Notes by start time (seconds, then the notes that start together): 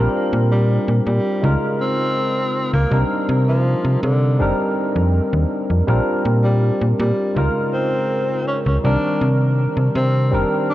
Already playing: G3 C4 D4 F4 A#4
0.33 A#2
0.52 G3
0.88 A#2
1.07 A#2 G3
1.42 C#2 C#3 G#3 D#4 F4 A#4
1.81 C4
2.74 C#2 A#3
2.90 C2 G3 C4 D4 D#4 A#4
3.29 C3
3.48 F3
3.84 C3
4.03 C3 D3
4.39 F1 G3 C4 D4 D#4 A#4
4.96 F2
5.33 D#2
5.70 F2
5.87 A#1 G3 C4 D4 F4 A#4
6.25 A#2
6.44 G3
6.81 A#2
6.99 A#2 G3
7.35 C#2 C#3 G#3 D#4 F4 A#4
7.73 C4
8.47 C#4
8.66 C#2 C#4
8.83 C2 D#3 G3 C4 D4 A#4
9.21 C3
9.77 C3
9.95 C3 C4
10.31 F1 D#3 G3 C4 D4 A#4
10.70 D4